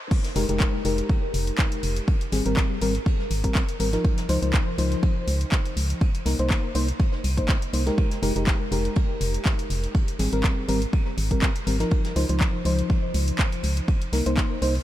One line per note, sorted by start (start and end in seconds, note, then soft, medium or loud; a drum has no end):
0.11 kick loud
0.11 crash loud
0.11 ride medium
0.24 snare soft
0.24 closed hi-hat medium
0.36 0.45 F1 loud
0.36 0.46 G#3 medium
0.36 0.46 D#4 medium
0.36 0.46 G4 medium
0.36 0.46 A#4 medium
0.36 snare soft
0.36 open hi-hat loud
0.36 ride medium
0.49 0.65 F1 medium
0.49 0.82 G#3 medium
0.49 0.82 D#4 medium
0.49 0.82 G4 medium
0.49 0.82 A#4 medium
0.49 closed hi-hat medium
0.60 kick loud
0.60 snare loud
0.60 clap loud
0.60 ride medium
0.84 1.02 F1 loud
0.84 2.06 G#3 medium
0.84 2.06 D#4 medium
0.84 2.07 G4 medium
0.84 2.07 A#4 medium
0.84 open hi-hat loud
0.84 ride medium
0.98 closed hi-hat medium
1.09 kick loud
1.09 ride medium
1.34 1.51 F1 loud
1.34 open hi-hat loud
1.34 ride medium
1.47 closed hi-hat medium
1.58 kick loud
1.58 snare loud
1.58 clap loud
1.58 ride medium
1.72 closed hi-hat medium
1.83 2.00 F1 medium
1.83 open hi-hat loud
1.83 ride medium
1.96 closed hi-hat medium
2.08 kick loud
2.08 ride medium
2.21 closed hi-hat medium
2.21 ride soft
2.32 2.41 G#1 loud
2.32 2.44 G3 medium
2.32 2.44 C4 medium
2.32 2.44 G#4 medium
2.32 snare medium
2.32 open hi-hat loud
2.32 ride medium
2.46 2.62 G#1 medium
2.46 2.79 G3 medium
2.46 2.79 C4 medium
2.46 2.79 A#4 medium
2.46 closed hi-hat medium
2.57 kick loud
2.57 snare loud
2.57 clap loud
2.57 ride medium
2.81 2.99 G#1 medium
2.81 2.94 G3 medium
2.81 2.94 C4 medium
2.81 2.94 A#4 loud
2.81 open hi-hat loud
2.81 ride medium
2.95 closed hi-hat medium
3.06 kick loud
3.06 ride medium
3.20 snare soft
3.30 3.48 G#1 loud
3.30 open hi-hat loud
3.30 ride medium
3.44 3.61 G3 medium
3.44 3.62 C4 medium
3.44 3.62 A#4 medium
3.44 kick medium
3.44 closed hi-hat medium
3.55 kick loud
3.55 snare loud
3.55 clap loud
3.55 ride medium
3.69 closed hi-hat medium
3.79 3.97 G#1 medium
3.79 3.90 G3 medium
3.79 3.90 C4 medium
3.79 3.90 A#4 medium
3.79 open hi-hat loud
3.79 ride medium
3.93 4.26 F3 medium
3.93 4.26 D#4 medium
3.93 4.27 A#4 loud
3.93 snare medium
3.93 closed hi-hat medium
4.04 kick loud
4.04 ride medium
4.17 snare medium
4.17 closed hi-hat medium
4.28 4.38 C#2 loud
4.28 4.39 F3 medium
4.28 4.39 D#4 medium
4.28 4.39 C5 loud
4.28 snare soft
4.28 open hi-hat loud
4.28 ride medium
4.42 4.58 C#2 medium
4.42 4.75 F3 medium
4.42 4.76 D#4 medium
4.42 4.76 C5 medium
4.42 closed hi-hat medium
4.53 kick loud
4.53 snare loud
4.53 clap loud
4.53 ride medium
4.78 4.96 C#2 loud
4.78 6.00 F3 medium
4.78 6.00 D#4 medium
4.78 6.00 C5 medium
4.78 open hi-hat loud
4.78 ride medium
4.92 closed hi-hat medium
5.03 kick loud
5.03 ride medium
5.28 5.45 C#2 loud
5.28 open hi-hat loud
5.28 ride medium
5.41 closed hi-hat medium
5.52 kick loud
5.52 snare loud
5.52 clap loud
5.52 ride medium
5.66 closed hi-hat medium
5.77 5.94 C#2 medium
5.77 open hi-hat loud
5.77 ride medium
5.90 closed hi-hat medium
6.01 kick loud
6.01 ride medium
6.14 closed hi-hat soft
6.14 ride soft
6.25 6.35 C2 loud
6.25 6.37 A#3 medium
6.25 6.37 D#4 medium
6.25 6.37 A#4 medium
6.25 snare medium
6.25 open hi-hat loud
6.25 ride medium
6.39 6.55 C2 medium
6.39 6.72 A#3 medium
6.39 6.72 D#4 medium
6.39 6.72 C5 medium
6.39 closed hi-hat medium
6.50 kick loud
6.50 snare loud
6.50 clap loud
6.50 ride medium
6.74 6.92 C2 medium
6.74 6.87 A#3 medium
6.74 6.87 D#4 medium
6.74 6.87 C5 loud
6.74 open hi-hat loud
6.74 ride medium
6.88 closed hi-hat medium
7.00 kick loud
7.00 ride medium
7.12 snare soft
7.24 7.41 C2 loud
7.24 open hi-hat loud
7.24 ride medium
7.37 7.55 A#3 medium
7.37 7.55 D#4 medium
7.37 7.55 C5 medium
7.37 kick medium
7.37 closed hi-hat medium
7.48 kick loud
7.48 snare loud
7.48 clap loud
7.48 ride medium
7.62 closed hi-hat medium
7.73 7.91 C2 medium
7.73 7.83 A#3 medium
7.73 7.83 D#4 medium
7.73 7.84 C5 medium
7.73 open hi-hat loud
7.73 ride medium
7.86 8.20 G#3 medium
7.86 8.20 D#4 medium
7.86 8.20 G4 medium
7.86 8.20 A#4 medium
7.86 snare medium
7.86 closed hi-hat medium
7.98 kick loud
7.98 ride medium
8.11 snare soft
8.11 closed hi-hat soft
8.22 8.32 F1 loud
8.22 8.33 G#3 medium
8.22 8.33 D#4 medium
8.22 8.33 G4 medium
8.22 8.33 A#4 medium
8.22 snare soft
8.22 open hi-hat loud
8.22 ride medium
8.36 8.52 F1 medium
8.36 8.69 G#3 medium
8.36 8.69 D#4 medium
8.36 8.69 G4 medium
8.36 8.69 A#4 medium
8.36 closed hi-hat medium
8.47 kick loud
8.47 snare loud
8.47 clap loud
8.47 ride medium
8.71 8.89 F1 loud
8.71 9.93 G#3 medium
8.71 9.93 D#4 medium
8.71 9.93 G4 medium
8.71 9.94 A#4 medium
8.71 open hi-hat loud
8.71 ride medium
8.85 closed hi-hat medium
8.95 kick loud
8.95 ride medium
9.21 9.38 F1 loud
9.21 open hi-hat loud
9.21 ride medium
9.34 closed hi-hat medium
9.45 kick loud
9.45 snare loud
9.45 clap loud
9.45 ride medium
9.59 closed hi-hat medium
9.70 9.87 F1 medium
9.70 open hi-hat loud
9.70 ride medium
9.84 closed hi-hat medium
9.95 kick loud
9.95 ride medium
10.08 closed hi-hat medium
10.08 ride soft
10.19 10.28 G#1 loud
10.19 10.30 G3 medium
10.19 10.31 C4 medium
10.19 10.31 G#4 medium
10.19 snare medium
10.19 open hi-hat loud
10.19 ride medium
10.32 10.48 G#1 medium
10.32 10.66 G3 medium
10.32 10.66 C4 medium
10.32 10.66 A#4 medium
10.32 closed hi-hat medium
10.43 kick loud
10.43 snare loud
10.43 clap loud
10.43 ride medium
10.68 10.86 G#1 loud
10.68 10.81 G3 medium
10.68 10.81 C4 medium
10.68 10.81 A#4 loud
10.68 open hi-hat loud
10.68 ride medium
10.82 closed hi-hat medium
10.93 kick loud
10.93 ride medium
11.06 snare soft
11.17 11.35 G#1 loud
11.17 open hi-hat loud
11.17 ride medium
11.31 11.48 G3 medium
11.31 11.49 C4 medium
11.31 11.49 A#4 medium
11.31 kick medium
11.31 closed hi-hat medium
11.42 kick loud
11.42 snare loud
11.42 clap loud
11.42 ride medium
11.56 closed hi-hat medium
11.67 11.84 G#1 medium
11.67 11.77 G3 medium
11.67 11.77 C4 medium
11.67 11.77 A#4 medium
11.67 open hi-hat loud
11.67 ride medium
11.80 12.13 F3 medium
11.80 12.13 D#4 medium
11.80 12.13 A#4 medium
11.80 snare medium
11.80 closed hi-hat medium
11.91 kick loud
11.91 ride medium
12.05 snare soft
12.05 closed hi-hat medium
12.16 12.25 C#2 loud
12.16 12.26 F3 medium
12.16 12.26 D#4 medium
12.16 12.26 C5 medium
12.16 snare soft
12.16 open hi-hat loud
12.16 ride medium
12.29 12.45 C#2 medium
12.29 12.62 F3 medium
12.29 12.63 D#4 medium
12.29 12.63 C5 medium
12.29 closed hi-hat medium
12.40 kick loud
12.40 snare loud
12.40 clap loud
12.40 ride medium
12.65 12.82 C#2 loud
12.65 13.87 F3 medium
12.65 13.87 D#4 medium
12.65 13.87 C5 medium
12.65 open hi-hat loud
12.65 ride medium
12.79 closed hi-hat medium
12.90 kick loud
12.90 ride medium
13.14 13.32 C#2 loud
13.14 open hi-hat loud
13.14 ride medium
13.28 closed hi-hat medium
13.39 kick loud
13.39 snare loud
13.39 clap loud
13.39 ride medium
13.52 closed hi-hat medium
13.63 13.81 C#2 medium
13.63 open hi-hat loud
13.63 ride medium
13.77 closed hi-hat medium
13.88 kick loud
13.88 ride medium
14.02 closed hi-hat medium
14.02 ride soft
14.13 14.22 C2 loud
14.13 14.24 A#3 medium
14.13 14.24 D#4 medium
14.13 14.24 A#4 medium
14.13 snare medium
14.13 open hi-hat loud
14.13 ride medium
14.26 14.42 C2 medium
14.26 14.59 A#3 medium
14.26 14.59 D#4 medium
14.26 14.59 C5 loud
14.26 closed hi-hat medium
14.37 kick loud
14.37 snare loud
14.37 clap loud
14.37 ride medium
14.62 14.79 C2 loud
14.62 14.74 A#3 medium
14.62 14.74 D#4 medium
14.62 14.74 C5 loud
14.62 open hi-hat loud
14.62 ride medium
14.75 open hi-hat medium